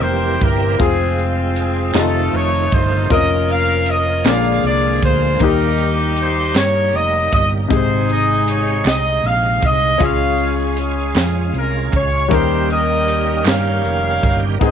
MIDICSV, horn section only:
0, 0, Header, 1, 2, 480
1, 0, Start_track
1, 0, Tempo, 767263
1, 497, Time_signature, 6, 3, 24, 8
1, 9203, End_track
2, 0, Start_track
2, 0, Title_t, "Horn section"
2, 0, Program_c, 0, 61
2, 0, Note_on_c, 0, 67, 76
2, 0, Note_on_c, 0, 70, 79
2, 16, Note_on_c, 0, 72, 89
2, 257, Note_off_c, 0, 72, 0
2, 262, Note_off_c, 0, 70, 0
2, 270, Note_on_c, 0, 70, 96
2, 471, Note_off_c, 0, 67, 0
2, 504, Note_off_c, 0, 70, 0
2, 509, Note_on_c, 0, 60, 66
2, 512, Note_on_c, 0, 65, 69
2, 517, Note_on_c, 0, 68, 89
2, 799, Note_off_c, 0, 68, 0
2, 993, Note_on_c, 0, 68, 77
2, 1200, Note_off_c, 0, 60, 0
2, 1202, Note_off_c, 0, 65, 0
2, 1210, Note_off_c, 0, 68, 0
2, 1228, Note_on_c, 0, 57, 74
2, 1233, Note_on_c, 0, 63, 66
2, 1236, Note_on_c, 0, 69, 95
2, 1467, Note_on_c, 0, 73, 96
2, 1468, Note_off_c, 0, 69, 0
2, 1704, Note_off_c, 0, 73, 0
2, 1712, Note_on_c, 0, 72, 95
2, 1920, Note_off_c, 0, 57, 0
2, 1923, Note_off_c, 0, 63, 0
2, 1947, Note_off_c, 0, 72, 0
2, 1951, Note_on_c, 0, 70, 84
2, 1957, Note_on_c, 0, 75, 103
2, 2173, Note_off_c, 0, 75, 0
2, 2203, Note_on_c, 0, 77, 97
2, 2432, Note_off_c, 0, 77, 0
2, 2438, Note_on_c, 0, 75, 87
2, 2642, Note_off_c, 0, 70, 0
2, 2670, Note_off_c, 0, 75, 0
2, 2677, Note_on_c, 0, 74, 76
2, 2678, Note_on_c, 0, 68, 78
2, 2684, Note_on_c, 0, 77, 106
2, 2912, Note_off_c, 0, 74, 0
2, 2913, Note_off_c, 0, 77, 0
2, 2920, Note_on_c, 0, 74, 98
2, 3135, Note_off_c, 0, 74, 0
2, 3160, Note_on_c, 0, 72, 92
2, 3366, Note_off_c, 0, 68, 0
2, 3392, Note_off_c, 0, 72, 0
2, 3395, Note_on_c, 0, 63, 76
2, 3396, Note_on_c, 0, 67, 77
2, 3404, Note_on_c, 0, 70, 93
2, 3705, Note_off_c, 0, 70, 0
2, 3886, Note_on_c, 0, 72, 85
2, 4084, Note_off_c, 0, 63, 0
2, 4085, Note_off_c, 0, 67, 0
2, 4099, Note_off_c, 0, 72, 0
2, 4116, Note_on_c, 0, 73, 97
2, 4349, Note_off_c, 0, 73, 0
2, 4353, Note_on_c, 0, 75, 92
2, 4584, Note_off_c, 0, 75, 0
2, 4591, Note_on_c, 0, 75, 88
2, 4692, Note_off_c, 0, 75, 0
2, 4832, Note_on_c, 0, 68, 77
2, 4835, Note_on_c, 0, 63, 77
2, 4839, Note_on_c, 0, 72, 93
2, 5055, Note_off_c, 0, 72, 0
2, 5078, Note_on_c, 0, 75, 86
2, 5294, Note_off_c, 0, 75, 0
2, 5319, Note_on_c, 0, 73, 82
2, 5522, Note_off_c, 0, 68, 0
2, 5524, Note_off_c, 0, 63, 0
2, 5551, Note_off_c, 0, 73, 0
2, 5556, Note_on_c, 0, 75, 98
2, 5789, Note_off_c, 0, 75, 0
2, 5793, Note_on_c, 0, 77, 88
2, 6028, Note_off_c, 0, 77, 0
2, 6040, Note_on_c, 0, 75, 97
2, 6271, Note_off_c, 0, 75, 0
2, 6274, Note_on_c, 0, 68, 71
2, 6274, Note_on_c, 0, 73, 73
2, 6282, Note_on_c, 0, 77, 107
2, 6584, Note_off_c, 0, 77, 0
2, 6751, Note_off_c, 0, 68, 0
2, 6752, Note_on_c, 0, 65, 65
2, 6754, Note_on_c, 0, 61, 65
2, 6759, Note_on_c, 0, 68, 74
2, 6962, Note_off_c, 0, 73, 0
2, 7204, Note_off_c, 0, 68, 0
2, 7242, Note_on_c, 0, 70, 84
2, 7441, Note_off_c, 0, 65, 0
2, 7442, Note_off_c, 0, 61, 0
2, 7455, Note_off_c, 0, 70, 0
2, 7486, Note_on_c, 0, 73, 85
2, 7713, Note_off_c, 0, 73, 0
2, 7719, Note_on_c, 0, 67, 71
2, 7726, Note_on_c, 0, 72, 96
2, 7943, Note_off_c, 0, 67, 0
2, 7950, Note_on_c, 0, 67, 71
2, 7950, Note_on_c, 0, 70, 68
2, 7952, Note_off_c, 0, 72, 0
2, 7956, Note_on_c, 0, 75, 96
2, 8402, Note_off_c, 0, 75, 0
2, 8420, Note_off_c, 0, 70, 0
2, 8428, Note_on_c, 0, 70, 75
2, 8431, Note_on_c, 0, 73, 74
2, 8435, Note_on_c, 0, 77, 112
2, 8638, Note_off_c, 0, 67, 0
2, 9037, Note_off_c, 0, 70, 0
2, 9037, Note_off_c, 0, 73, 0
2, 9037, Note_off_c, 0, 77, 0
2, 9143, Note_on_c, 0, 68, 72
2, 9146, Note_on_c, 0, 72, 75
2, 9150, Note_on_c, 0, 75, 98
2, 9203, Note_off_c, 0, 68, 0
2, 9203, Note_off_c, 0, 72, 0
2, 9203, Note_off_c, 0, 75, 0
2, 9203, End_track
0, 0, End_of_file